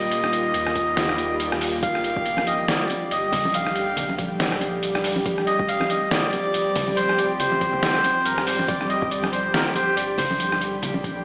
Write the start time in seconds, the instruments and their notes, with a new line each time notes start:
Already playing: sub bass D#1, synth drone D#3 A#3 F4, synth texture G3 G4, melodica D#5
0.11 closed hi-hat
0.24 cross-stick
0.33 closed hi-hat
0.54 sub bass D#2, closed hi-hat
0.67 cross-stick
0.76 kick, closed hi-hat
0.97 snare, closed hi-hat
1.09 cross-stick
1.18 closed hi-hat
1.40 closed hi-hat
1.52 cross-stick
1.61 open hi-hat
1.83 sub bass G1, synth drone D3 G3 G4, synth texture G3 G4, melodica F5, kick, closed hi-hat
1.95 cross-stick
2.04 closed hi-hat
2.16 kick
2.26 closed hi-hat
2.37 cross-stick, high conga
2.47 melodica D#5, closed hi-hat
2.68 melodica D5, snare, closed hi-hat
2.90 closed hi-hat, high conga
3.11 sub bass G1, melodica D#5, closed hi-hat
3.32 kick, open hi-hat, low conga
3.45 high conga
3.54 melodica F5, closed hi-hat
3.66 cross-stick
3.76 closed hi-hat
3.97 sub bass A#1, closed hi-hat, low conga
4.09 high conga
4.18 kick, closed hi-hat
4.40 snare, closed hi-hat
4.52 cross-stick
4.61 closed hi-hat, high conga
4.83 closed hi-hat
4.95 cross-stick
5.04 open hi-hat
5.16 high conga
5.25 sub bass F1, synth drone F3 C4, kick, closed hi-hat
5.38 cross-stick
5.47 melodica D#5, closed hi-hat
5.59 kick
5.68 melodica F5, closed hi-hat
5.80 cross-stick, high conga
5.90 melodica D#5, closed hi-hat
6.11 melodica D5, snare, closed hi-hat
6.33 closed hi-hat, high conga
6.54 sub bass F1, closed hi-hat
6.76 kick, open hi-hat, low conga
6.88 high conga
6.96 melodica C5, closed hi-hat
7.09 cross-stick
7.18 melodica D5, closed hi-hat
7.40 sub bass F1, melodica C5, closed hi-hat, low conga
7.52 high conga
7.61 kick, closed hi-hat
7.73 low conga
7.83 snare, closed hi-hat
7.95 cross-stick
8.04 closed hi-hat, high conga
8.25 sub bass G#1, melodica A#4, closed hi-hat
8.38 cross-stick
8.47 melodica C5, open hi-hat
8.59 high conga
8.68 sub bass G1, synth drone D3 G3, melodica D5, kick, closed hi-hat
8.81 cross-stick
8.89 melodica D#5, closed hi-hat
9.02 kick
9.11 melodica D5, closed hi-hat
9.23 cross-stick, high conga
9.32 melodica C5, closed hi-hat
9.53 melodica A#4, snare, closed hi-hat
9.75 melodica C5, closed hi-hat, high conga
9.96 sub bass G1, melodica D5, closed hi-hat
10.18 melodica C5, kick, open hi-hat, low conga
10.31 high conga
10.40 closed hi-hat
10.52 cross-stick
10.61 closed hi-hat
10.82 sub bass A#1, closed hi-hat, low conga
10.94 high conga
11.04 kick, closed hi-hat